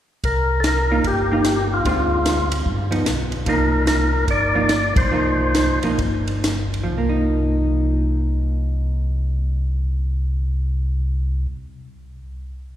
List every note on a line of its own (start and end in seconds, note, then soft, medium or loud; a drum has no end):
0.24 1.01 C2 medium
0.24 0.61 A#4 medium
0.24 kick soft
0.24 ride medium
0.60 0.65 A4 medium
0.60 snare medium
0.60 hi-hat pedal soft
0.60 ride medium
0.67 1.07 A#4 medium
0.91 1.04 A#3 medium
0.91 1.04 D#4 soft
0.91 1.04 F4 medium
1.04 1.81 G1 medium
1.04 1.68 G4 medium
1.04 kick soft
1.04 ride soft
1.31 1.44 A#3 soft
1.31 1.45 D#4 medium
1.31 1.45 F4 medium
1.45 snare medium
1.45 hi-hat pedal soft
1.45 ride medium
1.74 2.49 F4 medium
1.85 2.62 D2 medium
1.85 2.47 D3 soft
1.85 2.47 G#3 medium
1.85 2.47 C4 medium
1.85 2.47 F4 medium
1.85 kick soft
1.85 ride soft
2.26 snare medium
2.26 hi-hat pedal medium
2.26 ride medium
2.52 ride medium
2.66 3.03 G2 medium
2.66 kick soft
2.91 3.05 F3 soft
2.91 3.05 B3 medium
2.91 3.05 D#4 medium
2.91 ride soft
3.06 3.45 B1 medium
3.06 snare medium
3.06 hi-hat pedal soft
3.06 ride medium
3.32 ride soft
3.46 4.24 C2 medium
3.46 4.09 F3 soft
3.46 4.09 A#3 medium
3.46 4.09 D#4 medium
3.46 3.86 A#4 medium
3.46 kick soft
3.46 ride medium
3.87 4.26 A#4 medium
3.87 snare medium
3.87 hi-hat pedal medium
3.87 ride medium
4.28 4.92 G1 medium
4.28 4.94 D5 loud
4.28 kick soft
4.28 ride soft
4.55 4.69 F3 medium
4.55 4.69 A#3 medium
4.55 4.69 D#4 medium
4.69 snare medium
4.69 hi-hat pedal soft
4.69 ride medium
4.96 5.11 A#1 medium
4.96 5.79 C5 medium
4.96 kick medium
4.96 ride medium
5.12 5.79 C2 medium
5.12 5.77 F3 soft
5.12 5.78 A#3 medium
5.12 5.78 D#4 medium
5.55 snare medium
5.55 hi-hat pedal medium
5.55 ride medium
5.83 5.98 B1 medium
5.83 5.98 F3 medium
5.83 5.98 A#3 medium
5.83 5.98 D#4 medium
5.83 ride soft
5.99 6.87 G1 medium
5.99 kick soft
5.99 ride soft
6.28 ride soft
6.44 snare medium
6.44 hi-hat pedal medium
6.44 ride medium
6.74 ride soft
6.84 11.79 F3 medium
6.91 11.47 C2 medium
6.98 11.93 A#3 medium
7.09 12.04 D#4 medium